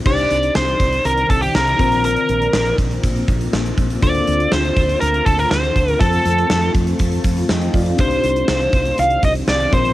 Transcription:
0.04 fretless electric bass C2, ambient pad C3 D#3 C4 D5, fm electric piano D4 D#4 G4 C5, lead electric guitar D5, kick, crash
0.18 closed hi-hat
0.31 fretless electric bass C2, closed hi-hat
0.43 closed hi-hat
0.55 fretless electric bass C2, lead electric guitar C5, snare
0.68 closed hi-hat
0.80 fretless electric bass C2, kick, closed hi-hat
0.93 closed hi-hat
1.05 fretless electric bass C2, lead electric guitar A#4, closed hi-hat
1.18 closed hi-hat
1.30 fretless electric bass C2, lead electric guitar A4, kick, closed hi-hat
1.42 lead electric guitar G4, closed hi-hat
1.55 fretless electric bass C2, lead electric guitar A#4, snare
1.67 closed hi-hat
1.78 fretless electric bass A#1, ambient pad A#3 F4, fm electric piano C4 F4 A#4 C5, kick, closed hi-hat
1.92 closed hi-hat
2.04 lead electric guitar A#4, closed hi-hat
2.16 closed hi-hat
2.29 fretless electric bass A#1, closed hi-hat
2.42 closed hi-hat
2.53 fretless electric bass A#1, snare
2.66 closed hi-hat
2.78 fretless electric bass A#1, kick, closed hi-hat
2.91 closed hi-hat
3.03 fretless electric bass A#1, kick, closed hi-hat
3.16 closed hi-hat
3.28 fretless electric bass A#1, kick, closed hi-hat
3.41 closed hi-hat
3.53 fretless electric bass A#1, snare
3.66 closed hi-hat
3.78 fretless electric bass A#1, kick, closed hi-hat
3.90 closed hi-hat
4.01 fretless electric bass D2, ambient pad D3 A3, fm electric piano D4 F4 A4 C5, lead electric guitar D5, kick, closed hi-hat
4.15 closed hi-hat
4.27 fretless electric bass D2, closed hi-hat
4.40 closed hi-hat
4.52 fretless electric bass D2, lead electric guitar C5, snare
4.65 closed hi-hat
4.77 fretless electric bass D2, kick, closed hi-hat
4.89 closed hi-hat
5.00 fretless electric bass D2, lead electric guitar A#4, closed hi-hat
5.14 closed hi-hat
5.26 fretless electric bass D2, lead electric guitar A4, kick, closed hi-hat
5.39 lead electric guitar A#4, closed hi-hat
5.51 fretless electric bass D2, lead electric guitar C5, snare
5.64 closed hi-hat
5.76 fretless electric bass D2, kick, closed hi-hat
5.88 closed hi-hat
5.99 fretless electric bass F2, fm electric piano C4 F4 A4 C5, ambient pad C4 F4, lead electric guitar A4, kick, closed hi-hat
6.13 closed hi-hat
6.25 fretless electric bass F2, closed hi-hat
6.38 closed hi-hat
6.50 fretless electric bass F2, snare
6.63 closed hi-hat
6.74 fretless electric bass F2, kick, closed hi-hat
6.87 closed hi-hat
6.99 fretless electric bass F2, kick, closed hi-hat
7.12 closed hi-hat
7.24 fretless electric bass F2, kick, closed hi-hat
7.37 closed hi-hat
7.49 fretless electric bass F2, fm electric piano D#5 G5, snare
7.62 closed hi-hat
7.74 fretless electric bass F2, fm electric piano D5 F5, kick, open hi-hat
7.86 closed hi-hat
7.97 fretless electric bass C2, ambient pad C3 D#3 D5, fm electric piano D4 D#4 G4 C5, lead electric guitar C5, kick, closed hi-hat
8.11 closed hi-hat
8.24 fretless electric bass C2, closed hi-hat
8.36 closed hi-hat
8.48 fretless electric bass C2, snare
8.61 closed hi-hat
8.73 fretless electric bass C2, kick, closed hi-hat
8.85 closed hi-hat
8.98 fretless electric bass C2, lead electric guitar F5, closed hi-hat
9.10 closed hi-hat
9.23 fretless electric bass C2, lead electric guitar D#5, kick, closed hi-hat
9.35 closed hi-hat
9.48 fretless electric bass C2, lead electric guitar D5, snare
9.60 closed hi-hat
9.71 fretless electric bass A#1, ambient pad A#3 F4, fm electric piano C4 F4 A#4 C5, lead electric guitar C5, kick, closed hi-hat
9.85 closed hi-hat

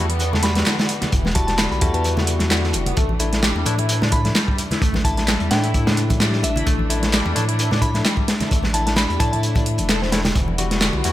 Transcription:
Already playing: sub bass E2, string section E3 G3 B3 F#4
0.10 analog synth lead B3, closed hi-hat
0.19 closed hi-hat, muted conga
0.33 analog synth lead A3, snare, low conga
0.42 tine electric piano G3 E4 F#4, synth bell B5, snare, closed hi-hat, muted conga
0.55 tine electric piano G3 E4 F#4, snare, closed hi-hat, high conga
0.66 analog synth lead D3, snare, clap, closed hi-hat
0.79 analog synth lead D3, snare, closed hi-hat, muted conga
0.89 closed hi-hat
1.01 analog synth lead B3, snare, closed hi-hat, muted conga, low conga
1.12 sub bass E1, analog synth lead E3, kick, closed hi-hat
1.25 snare, high conga
1.35 tine electric piano G3 E4 F#4, synth bell A5, kick, closed hi-hat, muted conga
1.47 synth bell A5, snare, closed hi-hat
1.58 analog synth lead D3, synth bell B5, snare, clap, closed hi-hat, muted conga
1.71 sub bass B1, synth bell B5, closed hi-hat
1.81 sub bass E2, tine electric piano G3 E4 F#4, analog synth lead A3, synth bell A5, kick, closed hi-hat, high conga
1.94 analog synth lead B3, synth bell A5, closed hi-hat, muted conga
2.04 closed hi-hat
2.17 analog synth lead A3, snare, muted conga, low conga
2.27 closed hi-hat
2.39 snare, closed hi-hat, high conga
2.51 analog synth lead D3, snare, clap, closed hi-hat, muted conga
2.64 analog synth lead D3, snare
2.73 sub bass E1, closed hi-hat, muted conga
2.86 analog synth lead B3, closed hi-hat, low conga
2.96 sub bass A1, analog synth lead A3, string section A3 D4, kick, closed hi-hat, muted conga
3.09 high conga
3.20 tine electric piano A3 D4 E4, closed hi-hat, muted conga
3.33 snare, closed hi-hat
3.43 analog synth lead G3, snare, clap, closed hi-hat
3.55 sub bass E2, muted conga
3.65 sub bass A2, tine electric piano A3 D4 E4, analog synth lead D4, closed hi-hat, high conga
3.78 analog synth lead E4, closed hi-hat, muted conga
3.89 closed hi-hat
4.02 analog synth lead D4, snare, low conga
4.11 tine electric piano A3 D4 E4, synth bell B5, kick, closed hi-hat, muted conga
4.25 tine electric piano A3 D4 E4, snare, closed hi-hat, high conga
4.35 analog synth lead G3, snare, clap, closed hi-hat, muted conga
4.48 analog synth lead G3, kick
4.58 closed hi-hat
4.71 analog synth lead E4, snare, closed hi-hat, muted conga, low conga
4.81 sub bass A1, analog synth lead A3, kick, closed hi-hat
4.94 snare, muted conga, high conga
5.04 tine electric piano A3 D4 E4, synth bell A5, kick, closed hi-hat
5.17 synth bell A5, snare, closed hi-hat
5.28 analog synth lead G3, snare, clap, closed hi-hat, muted conga
5.40 sub bass E2, closed hi-hat
5.51 sub bass A2, tine electric piano A3 D4 E4, analog synth lead D4, synth bell G5, snare, closed hi-hat, muted conga, high conga
5.64 analog synth lead E4, closed hi-hat
5.74 kick, closed hi-hat
5.87 analog synth lead D4, snare, closed hi-hat, muted conga, low conga
5.97 closed hi-hat
6.10 kick, closed hi-hat, muted conga, high conga
6.20 analog synth lead G3, snare, clap, closed hi-hat
6.33 analog synth lead G3, snare
6.43 sub bass A1, synth bell E5, closed hi-hat, muted conga
6.56 analog synth lead E4, closed hi-hat, low conga
6.66 sub bass A1, analog synth lead A3, kick, closed hi-hat, muted conga
6.79 high conga
6.90 tine electric piano A3 D4 E4, closed hi-hat
7.03 snare, closed hi-hat, muted conga
7.12 analog synth lead G3, snare, clap, closed hi-hat
7.25 sub bass E2, muted conga
7.35 sub bass A2, tine electric piano A3 D4 E4, analog synth lead D4, closed hi-hat, high conga
7.48 analog synth lead E4, closed hi-hat
7.59 closed hi-hat, muted conga
7.71 analog synth lead D4, snare, low conga
7.82 tine electric piano A3 D4 E4, synth bell B5, kick, closed hi-hat, muted conga
7.94 tine electric piano A3 D4 E4, snare, closed hi-hat, high conga
8.05 analog synth lead G3, snare, clap, closed hi-hat
8.17 analog synth lead G3, kick, muted conga
8.28 snare, closed hi-hat
8.40 analog synth lead E4, snare, closed hi-hat, muted conga, low conga
8.51 sub bass A1, analog synth lead A3, kick, closed hi-hat
8.63 snare, high conga
8.74 tine electric piano A3 D4 E4, synth bell A5, closed hi-hat, muted conga
8.86 synth bell A5, snare, closed hi-hat
8.96 analog synth lead G3, synth bell B5, snare, clap, closed hi-hat, muted conga
9.09 sub bass E2, synth bell B5, closed hi-hat
9.20 sub bass A2, tine electric piano A3 D4 E4, analog synth lead D4, synth bell A5, kick, closed hi-hat, high conga
9.32 analog synth lead E4, synth bell A5, closed hi-hat, muted conga
9.43 closed hi-hat
9.55 analog synth lead D4, kick, closed hi-hat, muted conga, low conga
9.66 closed hi-hat
9.78 sub bass E1, closed hi-hat, high conga
9.89 analog synth lead A4, snare, clap, closed hi-hat, muted conga
10.02 analog synth lead C4, snare
10.12 tine electric piano A3 D4 E4, snare, closed hi-hat, muted conga
10.25 analog synth lead G3, snare, closed hi-hat, low conga
10.35 sub bass E1, string section E3 G3 B3 F#4, analog synth lead E3, kick, closed hi-hat, muted conga
10.48 high conga
10.58 tine electric piano G3 E4 F#4, closed hi-hat, muted conga
10.71 snare, closed hi-hat
10.81 analog synth lead D3, snare, clap, closed hi-hat
10.93 sub bass B1, muted conga
11.04 sub bass E2, tine electric piano G3 E4 F#4, analog synth lead A3, closed hi-hat, high conga

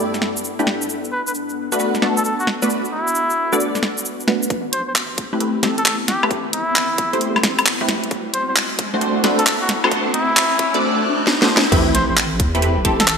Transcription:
Already playing: ambient pad G2 B3 D4 E4 A4
0.14 snare, shaker
0.22 snare
0.37 shaker
0.44 shaker
0.59 synth stab A3 D4 E4 G4 B4, shaker
0.67 snare
0.82 shaker
0.89 ambient pad F#4, shaker
1.04 shaker
1.12 muted trumpet B4
1.27 muted trumpet B4, shaker
1.35 shaker
1.49 shaker
1.72 synth stab A3 B3 D4 F#4 B4, shaker
1.80 synth stab A3 B3 D4 F#4 B4, shaker
1.95 snare, shaker
2.02 synth stab A3 B3 D4 F#4 A4, snare
2.17 muted trumpet A4, shaker
2.25 muted trumpet A4, shaker
2.40 muted trumpet F#4, shaker
2.47 snare
2.62 synth stab A3 B3 D4 F#4 B4, shaker
2.70 ambient pad B4, shaker
2.85 shaker
2.92 muted trumpet E4
3.07 shaker
3.15 shaker
3.30 shaker
3.52 synth stab A3 B3 D4 F#4 D5, shaker
3.60 shaker
3.75 snare, shaker
3.83 snare
3.98 shaker
4.05 shaker
4.20 shaker
4.28 synth stab A3 B3 D4 F#4 B4, snare
4.43 shaker
4.50 wobble bass A1, ambient pad B3 C4 E4 G4, kick, closed hi-hat, riser
4.72 muted trumpet C5, closed hi-hat
4.88 wobble bass A1, muted trumpet C5
4.95 clap, closed hi-hat
5.18 wobble bass E2, kick, closed hi-hat
5.33 synth stab A3 C4 E4 G4 B4
5.40 synth stab A3 C4 E4 G4 B4, closed hi-hat
5.55 wobble bass A1
5.63 synth stab A3 C4 E4 G4 A4, kick, snare, closed hi-hat
5.78 muted trumpet A4, closed hi-hat
5.85 muted trumpet A4, clap, closed hi-hat
6.08 muted trumpet G4, snare, closed hi-hat
6.23 synth stab A3 C4 E4 G4 B4, high woodblock
6.30 wobble bass A1, ambient pad F#4, kick, closed hi-hat
6.53 muted trumpet E4, closed hi-hat
6.68 wobble bass A1
6.76 clap, closed hi-hat
6.98 wobble bass E2, kick, closed hi-hat
7.13 synth stab A3 C4 E4 G4 C5, closed hi-hat
7.21 closed hi-hat
7.36 wobble bass A1, snare, high woodblock
7.43 kick, snare, closed hi-hat
7.59 closed hi-hat, high woodblock
7.66 clap, closed hi-hat
7.81 synth stab A3 C4 E4 G4 B4, kick
7.89 snare, closed hi-hat
8.04 closed hi-hat
8.11 wobble bass D2, ambient pad A3 C4, kick, closed hi-hat
8.34 muted trumpet C5, closed hi-hat
8.49 wobble bass D2, muted trumpet C5
8.56 clap, closed hi-hat
8.79 wobble bass A1, kick, closed hi-hat
8.94 synth stab A3 C4 D4 F#4 C5
9.01 synth stab A3 C4 D4 F#4 C5, closed hi-hat
9.16 wobble bass D2
9.24 synth stab A3 C4 D4 F#4 B4, kick, snare, closed hi-hat
9.39 muted trumpet A4, closed hi-hat
9.46 muted trumpet A4, clap, closed hi-hat
9.61 muted trumpet F#4
9.69 snare, closed hi-hat
9.84 synth stab A3 C4 D4 F#4 C5, high woodblock
9.92 wobble bass D2, kick, closed hi-hat
10.14 muted trumpet E4, closed hi-hat
10.29 wobble bass D2
10.37 clap, closed hi-hat
10.59 wobble bass A1, kick, closed hi-hat
10.74 synth stab A3 C4 D4 F#4 D5, closed hi-hat
11.27 snare
11.42 synth stab A3 C4 D4 F#4 C5, snare
11.57 snare
11.72 wobble bass A1, synth stab A3 C4 E4 G4 B4, ambient pad C4 E4 G4 B4, kick, closed hi-hat, crash, sub drop
11.94 muted trumpet C5, snare, closed hi-hat
12.09 wobble bass A1, muted trumpet C5
12.17 clap, closed hi-hat
12.40 wobble bass E2, kick, closed hi-hat
12.55 synth stab A3 C4 E4 G4 B4, closed hi-hat
12.62 synth stab A3 C4 E4 G4 B4, closed hi-hat
12.77 wobble bass A1
12.85 synth stab A3 C4 E4 G4 A4, kick, closed hi-hat
13.00 muted trumpet A4, snare, closed hi-hat
13.07 muted trumpet A4, clap, closed hi-hat

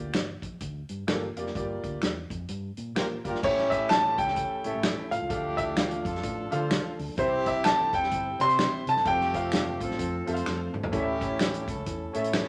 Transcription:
Already playing: upright piano A#3 F4 G4 D5
0.13 fingered electric bass G1, finger snap, snare, closed hi-hat
0.42 fingered electric bass A#1, kick, closed hi-hat
0.60 fingered electric bass D2, kick, closed hi-hat
0.89 fingered electric bass G2, closed hi-hat
1.07 fingered electric bass G1, upright piano A#3 F4 G4 A4, finger snap, snare, closed hi-hat
1.36 fingered electric bass F1, upright piano A#3 F4 G4 D5, closed hi-hat
1.46 snare
1.55 fingered electric bass G1, upright piano A#3 F4 G4 D5, kick, closed hi-hat
1.84 fingered electric bass D2, kick, closed hi-hat
2.02 fingered electric bass E2, finger snap, snare, closed hi-hat
2.30 fingered electric bass F2, kick, closed hi-hat
2.48 fingered electric bass G2, closed hi-hat
2.77 fingered electric bass A#2, closed hi-hat
2.95 fingered electric bass A#1, upright piano A#3 F4 G4 C5, horn section F4 G4 A#4, finger snap, snare, closed hi-hat
3.24 fingered electric bass G1, upright piano A#3 F4 G4 D5, horn section F4 G4 A#4, kick, closed hi-hat
3.35 snare
3.42 fingered electric bass A1, tonewheel organ E3 A3 C#4 A4, upright piano C#4 E4 A4 E5, vibraphone C#4, horn section C#4 E4 G4, grand piano C#5, kick, crash
3.58 snare
3.70 vibraphone E4, grand piano E5, kick, closed hi-hat
3.89 vibraphone A4, grand piano A5, finger snap, snare, closed hi-hat
4.17 fingered electric bass C#2, horn section C#4 E4 A4, vibraphone G4, grand piano G5, kick, closed hi-hat
4.28 snare
4.36 kick, closed hi-hat
4.64 fingered electric bass A1, upright piano C#4 E4 A4 E5, horn section E4 A4 C#5, closed hi-hat
4.75 fingered electric bass A1
4.83 finger snap, snare, closed hi-hat
5.10 fingered electric bass A1, vibraphone F4, grand piano F5, closed hi-hat
5.21 fingered electric bass C#2
5.29 fingered electric bass D2, tonewheel organ F3 D4 A4, horn section A3 D4 G4, upright piano D4 F4 A4 F5, kick, closed hi-hat
5.57 vibraphone E4, grand piano E5, kick, closed hi-hat
5.76 vibraphone F4, grand piano F5, finger snap, snare, closed hi-hat
5.91 closed hi-hat
6.05 fingered electric bass F2, horn section D4 F4 A4, kick, closed hi-hat
6.15 snare
6.23 fingered electric bass A1, kick, closed hi-hat
6.51 fingered electric bass D3, upright piano D4 F4 A4 F5, horn section F4 A4 C5, closed hi-hat
6.71 finger snap, snare, closed hi-hat
6.99 fingered electric bass D2, open hi-hat
7.08 fingered electric bass A#1
7.17 fingered electric bass C2, tonewheel organ E3 G3 C4 G4, upright piano C4 E4 G4 E5, vibraphone C4, horn section C4 E4 G4, grand piano C5, kick, closed hi-hat
7.46 vibraphone E4, grand piano E5, kick, closed hi-hat
7.64 vibraphone A4, grand piano A5, finger snap, snare, closed hi-hat
7.93 fingered electric bass E2, horn section C4 E4 A4, vibraphone G4, grand piano G5, kick, closed hi-hat
8.03 snare
8.11 fingered electric bass G1, kick, closed hi-hat
8.39 fingered electric bass C3, upright piano C4 E4 G4 D5, horn section E4 G4 C5, vibraphone C5, grand piano C6, closed hi-hat
8.46 upright piano E5, closed hi-hat
8.59 finger snap, snare, closed hi-hat
8.86 fingered electric bass C3, vibraphone A4, grand piano A5, closed hi-hat
8.96 snare
9.05 fingered electric bass F1, tonewheel organ F3 A3 A4, horn section A3 C4 G4, upright piano C4 F4 A4 F5, vibraphone G4, grand piano G5, kick, closed hi-hat
9.20 snare
9.34 vibraphone F4, grand piano F5, kick, closed hi-hat
9.52 finger snap, snare, closed hi-hat
9.80 fingered electric bass A1, horn section C4 F4 A4, kick, closed hi-hat
9.91 snare
9.99 fingered electric bass F2, kick, closed hi-hat
10.26 fingered electric bass F2, upright piano C4 F4 A4 E5, horn section F4 A4 C5, closed hi-hat
10.34 upright piano F5, closed hi-hat
10.46 fingered electric bass F2, finger snap, snare
10.74 fingered electric bass G1, mid tom
10.84 floor tom
10.92 fingered electric bass A1, tonewheel organ E3 C#4, upright piano C#4 E4 A4 D5, horn section C#4 E4 G4, kick, closed hi-hat
10.99 upright piano E5
11.21 kick, closed hi-hat
11.39 finger snap, snare, closed hi-hat
11.54 closed hi-hat
11.67 fingered electric bass C#2, horn section C#4 E4 A4, kick, closed hi-hat
11.86 fingered electric bass E2, kick, closed hi-hat
12.13 fingered electric bass A2, upright piano C#4 E4 A4 E5, horn section E4 A4 C#5, closed hi-hat
12.24 closed hi-hat
12.33 finger snap, snare, closed hi-hat

